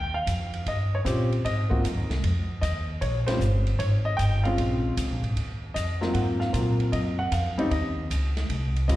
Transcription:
0.00 0.26 D#2 medium
0.00 0.15 G5 loud
0.14 0.68 F5 medium
0.27 0.65 F2 medium
0.27 kick soft
0.27 hi-hat pedal medium
0.27 ride medium
0.54 ride soft
0.66 1.04 G2 medium
0.66 0.91 D#5 medium
0.66 kick soft
0.66 ride medium
0.95 1.00 C#5 medium
1.05 1.43 A#2 medium
1.05 1.29 C4 medium
1.05 1.28 C#4 medium
1.05 1.29 F4 medium
1.05 1.29 G4 medium
1.05 1.46 C5 medium
1.05 kick soft
1.05 hi-hat pedal medium
1.05 ride medium
1.32 ride soft
1.45 1.83 G#2 medium
1.45 2.58 D#5 medium
1.45 kick soft
1.45 ride medium
1.70 1.82 A#3 medium
1.70 1.82 C4 medium
1.70 1.82 F4 medium
1.70 1.82 F#4 medium
1.70 kick medium
1.84 1.96 F#2 medium
1.84 kick soft
1.84 hi-hat pedal medium
1.84 ride medium
1.96 2.09 D#2 medium
2.09 2.22 C2 medium
2.09 snare medium
2.09 ride soft
2.23 2.61 F2 medium
2.23 kick soft
2.23 ride medium
2.61 3.00 D#2 medium
2.61 2.98 D#5 medium
2.61 kick soft
2.61 hi-hat pedal medium
2.61 ride medium
3.01 3.39 A#1 medium
3.01 3.25 C#5 medium
3.01 kick soft
3.01 ride medium
3.27 3.39 G3 medium
3.27 3.39 C4 medium
3.27 3.39 C#4 medium
3.27 3.39 F4 medium
3.27 3.75 C5 medium
3.27 snare medium
3.27 ride medium
3.39 3.78 G1 medium
3.39 hi-hat pedal medium
3.67 ride soft
3.79 4.17 G#1 medium
3.79 3.85 C#5 medium
3.79 kick soft
3.79 ride medium
4.05 4.19 D#5 medium
4.17 4.57 G1 medium
4.17 4.45 G5 medium
4.17 kick soft
4.17 hi-hat pedal medium
4.17 ride medium
4.43 4.94 G#3 medium
4.43 4.94 C4 medium
4.43 4.95 C#4 medium
4.43 4.95 F4 medium
4.43 5.18 F5 medium
4.43 ride soft
4.57 4.96 A#1 medium
4.57 kick soft
4.57 ride medium
4.97 5.10 C#2 medium
4.97 kick soft
4.97 hi-hat pedal medium
4.97 ride medium
5.10 5.22 A#1 soft
5.23 5.35 G#1 medium
5.23 ride soft
5.36 5.74 D#2 medium
5.36 kick soft
5.36 ride medium
5.74 6.13 F2 medium
5.74 6.15 D#5 medium
5.74 kick soft
5.74 hi-hat pedal medium
5.74 ride medium
6.01 6.51 F#3 medium
6.01 6.51 A#3 medium
6.01 6.51 C4 medium
6.01 6.51 F4 medium
6.01 snare medium
6.14 6.52 G#2 medium
6.14 6.20 F#5 medium
6.14 kick soft
6.14 ride medium
6.40 6.89 F5 medium
6.40 snare soft
6.53 6.91 A#2 medium
6.53 7.13 F#3 medium
6.53 7.13 A#3 medium
6.53 7.13 C4 medium
6.53 7.13 F4 medium
6.53 kick soft
6.53 hi-hat pedal medium
6.53 ride medium
6.80 ride soft
6.92 7.30 F#2 medium
6.92 6.98 D#5 medium
6.92 kick soft
6.92 ride medium
7.19 7.31 F#5 medium
7.31 7.70 F2 medium
7.31 7.72 F5 medium
7.31 kick soft
7.31 hi-hat pedal medium
7.31 ride medium
7.58 7.69 G3 medium
7.58 7.70 C4 medium
7.58 7.70 C#4 medium
7.58 7.70 D#4 medium
7.58 ride soft
7.71 8.09 D#2 medium
7.71 8.86 D#5 medium
7.71 kick soft
7.71 ride medium
8.10 8.48 C#2 medium
8.10 kick soft
8.10 hi-hat pedal medium
8.10 ride medium
8.37 snare medium
8.37 ride soft
8.49 8.87 C2 medium
8.49 kick soft
8.49 ride medium
8.76 ride soft
8.88 8.96 D#2 medium
8.88 8.96 G3 medium
8.88 8.96 C4 medium
8.88 8.96 C#4 medium
8.88 8.96 F4 medium
8.88 8.96 D#5 medium
8.88 kick soft
8.88 hi-hat pedal soft
8.88 ride medium

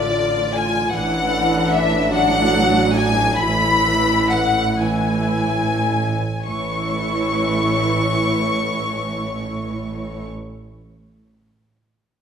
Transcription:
0.00 0.89 A1 medium
0.00 0.89 A2 medium
0.00 0.93 D3 medium
0.00 0.91 F4 medium
0.00 0.52 D5 loud
0.00 0.54 D5 loud
0.54 0.93 G#5 loud
0.93 6.13 A1 loud
0.93 6.13 A2 loud
0.93 2.08 E3 loud
0.93 3.38 D4 loud
0.93 1.70 F#5 loud
0.93 1.72 F#5 loud
1.72 2.11 E5 loud
2.10 3.37 F#3 loud
2.10 2.94 F#5 loud
2.10 2.93 F#5 loud
2.95 3.37 G#5 loud
2.95 3.39 G#5 loud
3.38 4.79 E3 medium
3.38 4.79 E4 loud
3.38 4.31 B5 loud
4.31 4.81 F#5 loud
4.80 6.14 E3 medium
4.80 6.15 E4 medium
4.80 6.46 G#5 loud
4.80 6.47 G#5 medium
6.44 10.26 A1 medium
6.44 10.27 A2 medium
6.44 10.25 E3 loud
6.44 10.26 E4 medium
6.44 10.28 C#5 medium
6.44 10.26 C#6 loud

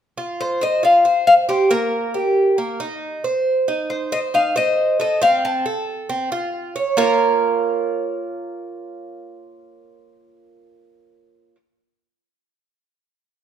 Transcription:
0.18 0.60 F4 medium
0.41 0.63 C5 medium
0.61 0.83 C5 medium
0.61 0.83 D#5 medium
0.83 1.04 F4 medium
0.83 1.25 F5 loud
1.05 1.48 C5 medium
1.27 1.33 F5 loud
1.49 1.70 G4 medium
1.49 1.71 C5 medium
1.71 2.13 A#3 medium
1.71 2.54 A#4 medium
2.14 2.57 G4 medium
2.58 2.79 A#3 medium
2.80 3.23 D#4 medium
3.24 3.67 C5 medium
3.68 4.11 D#4 medium
3.90 4.10 C5 medium
4.12 4.33 C5 medium
4.12 4.18 D#5 medium
4.34 4.55 D#4 medium
4.34 4.57 F5 medium
4.56 4.98 C5 medium
4.56 5.00 D#5 medium
5.00 5.21 A4 medium
5.00 5.22 D#5 medium
5.22 5.64 C4 medium
5.22 5.43 F5 loud
5.45 5.85 A5 medium
5.66 6.08 A4 medium
6.09 6.31 C4 medium
6.32 6.74 F4 medium
6.76 6.97 C#5 medium
6.97 11.55 A#3 medium
6.97 11.56 F4 medium
6.97 11.56 A#4 loud
6.97 11.56 C#5 medium

